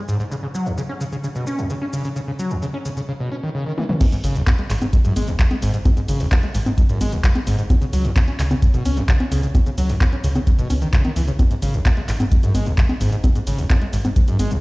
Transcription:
0.08 G#2, cabasa
0.20 G#2, cabasa
0.31 C#3, cabasa
0.43 C#3
0.54 F#3, cabasa
0.66 C#2, cabasa
0.78 C#3, cabasa
0.89 C#4
1.01 C#3, cabasa
1.12 C#3, cabasa
1.24 C#3, cabasa
1.35 B2, cabasa
1.47 C#4, cabasa
1.58 C#2, cabasa
1.70 C#3, cabasa
1.82 C#4
1.93 C#3, cabasa
2.05 C#3, cabasa
2.16 C#3, cabasa
2.28 C#3
2.39 F#3, cabasa
2.51 C#2, cabasa
2.62 C#3, cabasa
2.74 C#4
2.85 C#3, cabasa
2.97 C#3, cabasa
3.08 C#3
3.20 B2
3.32 C#4
3.43 D#3
3.55 C#3
3.66 D#3
3.78 E3, high tom
3.89 C#3, mid tom
4.01 G#2, kick, closed hi-hat, crash, high conga, cabasa
4.12 G#2, closed hi-hat, cabasa
4.24 G#1 C#3, open hi-hat, cabasa
4.35 G#1, closed hi-hat, cabasa
4.47 G#2, kick, clap, closed hi-hat, high conga, cabasa
4.58 G#3, closed hi-hat
4.70 G#1 G#2, clap, open hi-hat, cabasa
4.82 G#2, closed hi-hat, high conga, cabasa
4.93 G#2, kick, closed hi-hat, cabasa
5.05 F#2 G#2, closed hi-hat, cabasa
5.16 G#1 G#3, open hi-hat, high conga, cabasa
5.28 G#1, closed hi-hat, cabasa
5.39 G#2, kick, clap, closed hi-hat, cabasa
5.51 G#3, closed hi-hat, high conga
5.62 G#1 G#2, open hi-hat, cabasa
5.74 G#2, closed hi-hat, cabasa
5.85 G#2, kick, closed hi-hat, high conga, cabasa
5.97 G#2, closed hi-hat, cabasa
6.08 G#1 C#3, open hi-hat, cabasa
6.20 G#1, open hi-hat, cabasa
6.31 G#2, kick, clap, closed hi-hat, high conga, cabasa
6.43 G#3, closed hi-hat
6.55 G#1 G#2, open hi-hat, cabasa
6.66 G#2, closed hi-hat, high conga, cabasa
6.78 G#2, kick, closed hi-hat, cabasa
6.89 F#2 G#2, closed hi-hat, cabasa
7.01 G#1 G#3, open hi-hat, high conga, cabasa
7.12 G#1, closed hi-hat, cabasa
7.24 G#2, kick, clap, closed hi-hat, cabasa
7.35 G#3, closed hi-hat, high conga
7.47 G#1 G#2, open hi-hat, cabasa
7.59 G#2, closed hi-hat, cabasa
7.70 C#3, kick, closed hi-hat, high conga, cabasa
7.82 C#3, closed hi-hat, cabasa
7.93 C#2 F#3, open hi-hat, cabasa
8.05 C#2, closed hi-hat, cabasa
8.16 C#3, kick, clap, closed hi-hat, high conga, cabasa
8.28 C#4, closed hi-hat
8.39 C#2 C#3, clap, open hi-hat, cabasa
8.51 C#3, closed hi-hat, high conga, cabasa
8.62 C#3, kick, closed hi-hat, cabasa
8.74 G#1 B2, closed hi-hat, cabasa
8.85 C#2 C#4, open hi-hat, high conga, cabasa
8.97 C#2, closed hi-hat, cabasa
9.08 C#3, kick, clap, closed hi-hat, cabasa
9.20 C#4, closed hi-hat, high conga
9.31 C#2 C#3, open hi-hat, cabasa
9.43 C#3, closed hi-hat, cabasa
9.55 C#3, kick, closed hi-hat, high conga, cabasa
9.66 C#3, closed hi-hat, cabasa
9.78 C#2 F#3, open hi-hat, cabasa
9.89 C#2, open hi-hat, cabasa
10.01 C#3, kick, clap, closed hi-hat, high conga, cabasa
10.12 C#4, closed hi-hat
10.24 C#2 C#3, open hi-hat, cabasa
10.35 C#3, closed hi-hat, high conga, cabasa
10.47 C#3, kick, closed hi-hat, cabasa
10.58 G#1 B2, closed hi-hat, cabasa
10.70 C#2 C#4, open hi-hat, high conga, cabasa
10.82 D#3, closed hi-hat, cabasa
10.93 C#3, kick, clap, closed hi-hat, cabasa
11.05 D#3, closed hi-hat, high conga
11.16 C#2 E3, open hi-hat, cabasa
11.28 C#3, closed hi-hat, cabasa
11.39 G#2, kick, closed hi-hat, high conga, cabasa
11.51 G#2, closed hi-hat, cabasa
11.62 G#1 C#3, open hi-hat, cabasa
11.74 G#1, closed hi-hat, cabasa
11.85 G#2, kick, clap, closed hi-hat, high conga, cabasa
11.97 G#3, closed hi-hat
12.08 G#1 G#2, clap, open hi-hat, cabasa
12.20 G#2, closed hi-hat, high conga, cabasa
12.31 G#2, kick, closed hi-hat, cabasa
12.43 F#2 G#2, closed hi-hat, cabasa
12.55 G#1 G#3, open hi-hat, high conga, cabasa
12.66 G#1, closed hi-hat, cabasa
12.78 G#2, kick, clap, closed hi-hat, cabasa
12.89 G#3, closed hi-hat, high conga
13.01 G#1 G#2, open hi-hat, cabasa
13.12 G#2, closed hi-hat, cabasa
13.24 G#2, kick, closed hi-hat, high conga, cabasa
13.35 G#2, closed hi-hat, cabasa
13.47 G#1 C#3, open hi-hat, cabasa
13.58 G#1, open hi-hat, cabasa
13.70 G#2, kick, clap, closed hi-hat, high conga, cabasa
13.82 G#3, closed hi-hat
13.93 G#1 G#2, open hi-hat, cabasa
14.05 G#2, closed hi-hat, high conga, cabasa
14.16 G#2, kick, closed hi-hat, cabasa
14.28 F#2 G#2, closed hi-hat, cabasa
14.39 G#1 G#3, open hi-hat, high conga, cabasa
14.51 G#1, closed hi-hat, cabasa

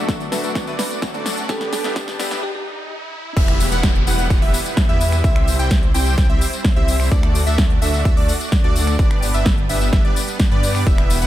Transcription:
Already playing: F#3 A3 D4 F#4 A4 D5 E5, riser
0.08 kick, snare, closed hi-hat, tambourine
0.20 closed hi-hat, tambourine
0.31 F#3 A3 D4 F#4 A4 B4 E5, snare, open hi-hat, tambourine
0.44 B4, closed hi-hat, tambourine
0.55 A3 D4 F#4 A4 E5, kick, snare, closed hi-hat, tambourine
0.67 F#3 A3 D4 F#4 A4 B4 D5, closed hi-hat, tambourine
0.79 B4, snare, open hi-hat, tambourine
0.91 closed hi-hat, tambourine
1.02 F#3 A3 D4 F#4, kick, snare, closed hi-hat, tambourine
1.14 A3 D4 F#4 A4 D5, closed hi-hat, tambourine
1.26 snare, open hi-hat, tambourine
1.37 closed hi-hat, tambourine
1.49 G3 B3 D4 G4 A4 B4 D5, kick, snare, closed hi-hat, tambourine
1.61 snare, closed hi-hat
1.73 A4, snare, open hi-hat, tambourine
1.84 G3 B3 D4 G4 B4 E5, snare, closed hi-hat, tambourine
1.96 kick, snare, closed hi-hat, tambourine
2.08 snare, closed hi-hat, tambourine
2.19 G3 B3 D4 G4 B4 E5, snare, open hi-hat, tambourine
2.31 snare, closed hi-hat, tambourine
2.43 G4
2.55 G4
3.37 E1 G3 B3 E4 G4 B4 E5, kick, closed hi-hat, crash, tambourine, downlifter
3.48 finger snap, closed hi-hat
3.60 open hi-hat, tambourine
3.72 E1 B3 E4 G4 B4 F#5, closed hi-hat, tambourine
3.83 kick, snare, closed hi-hat, tambourine
3.95 closed hi-hat
4.07 E1 B3 E4 G4 B4 F#5, open hi-hat, tambourine
4.19 closed hi-hat, tambourine
4.30 B3 E4 G4 B4 F#5, kick, closed hi-hat, tambourine
4.42 E1 B3 E4 G4 B4 E5, open hi-hat
4.54 open hi-hat, tambourine
4.66 closed hi-hat, tambourine
4.77 kick, snare, closed hi-hat, tambourine
4.89 E2 B3 E4 G4 B4 E5, closed hi-hat
5.01 open hi-hat, tambourine
5.12 finger snap, closed hi-hat, tambourine
5.24 C2 C4 E4 G4 C5 E5, kick, closed hi-hat, tambourine
5.36 finger snap, closed hi-hat
5.48 open hi-hat, tambourine
5.59 C2 C4 E4 G4 C5 G5, closed hi-hat, tambourine
5.71 kick, snare, closed hi-hat
5.83 closed hi-hat
5.94 C2 C4 E4 G4 C5 G5, open hi-hat, tambourine
6.06 closed hi-hat, tambourine
6.18 C2 C4 E4 G4 C5 G5, kick, snare, closed hi-hat, tambourine
6.30 C2 C4 E4 G4 C5 E5, closed hi-hat
6.41 open hi-hat, tambourine
6.53 closed hi-hat, tambourine
6.64 kick, snare, closed hi-hat, tambourine
6.76 C2 C4 E4 G4 C5 E5, closed hi-hat
6.88 open hi-hat, tambourine
7.00 finger snap, open hi-hat, tambourine
7.12 D2 A3 D4 F#4 A4 D5, kick, closed hi-hat, tambourine
7.23 finger snap, closed hi-hat
7.35 open hi-hat, tambourine
7.47 D2 A3 D4 F#4 A4 E5, closed hi-hat, tambourine
7.58 kick, snare, closed hi-hat
7.70 closed hi-hat
7.82 D2 A3 D4 F#4 A4 E5, open hi-hat, tambourine
7.94 closed hi-hat, tambourine
8.05 A3 D4 F#4 A4 E5, kick, closed hi-hat, tambourine
8.17 D2 A3 D4 F#4 A4 D5, open hi-hat
8.29 open hi-hat, tambourine
8.41 closed hi-hat, tambourine
8.52 kick, snare, closed hi-hat, tambourine
8.64 D2 A3 D4 F#4 A4 D5, closed hi-hat
8.76 open hi-hat, tambourine
8.87 finger snap, closed hi-hat, tambourine
8.99 G1 G3 B3 D4 G4 B4 D5, kick, closed hi-hat, tambourine
9.11 finger snap, closed hi-hat
9.22 open hi-hat, tambourine
9.34 G1 B3 D4 G4 B4 E5, closed hi-hat, tambourine
9.46 kick, snare, closed hi-hat, tambourine
9.58 closed hi-hat
9.69 G1 B3 D4 G4 B4 E5, open hi-hat, tambourine
9.81 closed hi-hat, tambourine
9.93 B3 D4 G4 B4 E5, kick, snare, closed hi-hat, tambourine
10.05 G1 B3 D4 G4 B4 D5, closed hi-hat
10.16 open hi-hat, tambourine
10.28 closed hi-hat, tambourine
10.40 kick, snare, closed hi-hat, tambourine
10.51 G2 B3 D4 G4 B4 D5, closed hi-hat
10.63 open hi-hat, tambourine
10.75 finger snap, open hi-hat, tambourine
10.87 E1 B3 E4 G4 B4 E5, kick, closed hi-hat, tambourine
10.98 finger snap, closed hi-hat
11.10 open hi-hat, tambourine
11.22 E1 B3 E4 G4 B4 F#5, closed hi-hat, tambourine

